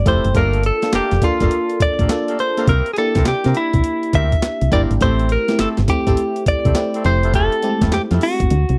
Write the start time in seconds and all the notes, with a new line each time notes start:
Already playing: A3 C4 E4 G4
0.05 F1 A3 C4 E4 F4 G4 A4 C5, kick, closed hi-hat
0.25 F#1, closed hi-hat
0.34 G1 A3 A#3 D4 F4 G4 A4 A#4, kick, closed hi-hat
0.53 closed hi-hat
0.63 A4, closed hi-hat
0.82 A#3 D4 F4 A4, snare, closed hi-hat
0.93 F1 A3 A#3 F4 G4 A4, snare, clap, closed hi-hat
1.11 F1, snare, closed hi-hat
1.22 A#3 D4 F4 A4, kick, closed hi-hat
1.40 G1 A3 A#3 D4 F4 G4 A4, kick, closed hi-hat
1.51 closed hi-hat
1.70 closed hi-hat
1.80 A#1 D5, kick, closed hi-hat
1.99 A#1 A3 A#3 F4 G4 A4, kick, closed hi-hat
2.09 A#3 D4 F4 A4, snare, clap, closed hi-hat
2.28 A3 A#3 F4 G4 A4, closed hi-hat
2.39 C5, closed hi-hat
2.57 A3 A#3 D4 F4 G4 A4, closed hi-hat
2.67 C2 A#3 C4 E4 G4 A#4, kick, closed hi-hat
2.86 closed hi-hat
2.94 A#3 G#4, closed hi-hat
2.98 D4 E4 G4 A4
3.15 C2 A#3 C4 E4 G4 A#4, kick, snare, closed hi-hat
3.25 C3 G4, snare, clap, closed hi-hat
3.44 C3 A#3 C4 E4 G4 A#4, snare, closed hi-hat
3.55 E4, closed hi-hat
3.73 C2, kick, closed hi-hat
3.84 closed hi-hat
4.03 closed hi-hat
4.13 D2 A#3 C4 E4 G4 A#4 E5, kick, closed hi-hat
4.32 kick, closed hi-hat
4.42 snare, clap, closed hi-hat
4.61 C2, closed hi-hat
4.71 G1 A#3 C4 D4 E4 G4 A#4 D5, kick, closed hi-hat
4.91 G#1, closed hi-hat
5.01 A1 A3 C4 E4 G4 A4 C5, kick, closed hi-hat
5.19 closed hi-hat
5.29 A#4, closed hi-hat
5.48 A3 C4 E4 G4, snare, closed hi-hat
5.59 G1 A3 C4 E4 G4 A4, snare, clap, closed hi-hat
5.77 G1, snare, closed hi-hat
5.88 A3 C4 E4 G4, kick, closed hi-hat
6.07 A1 A3 C4 E4 G4 A4, kick, closed hi-hat
6.17 closed hi-hat
6.36 closed hi-hat
6.46 C2 D5, kick, closed hi-hat
6.65 C2 A3 C4 E4 G4 A4, kick, closed hi-hat
6.75 A3 C4 E4 G4, snare, clap, closed hi-hat
6.94 A3 C4 E4 G4 A4, closed hi-hat
7.04 F1 A3 C4 E4 G4 C5, closed hi-hat
7.23 A3 E4 F4 G4 A4, closed hi-hat
7.34 A3 E4 F4 G4 A4, kick, closed hi-hat
7.52 closed hi-hat
7.63 G#3 C4 E4 G4, closed hi-hat
7.69 A3
7.81 F1 A3 E4 F4 G4 A4, kick, snare, closed hi-hat
7.92 F2 G4, snare, clap, closed hi-hat
8.11 F2 A3 E4 F4 G4 A4, snare, closed hi-hat
8.21 F#4, open hi-hat
8.40 G1, kick, closed hi-hat
8.50 D2, closed hi-hat
8.69 C2, closed hi-hat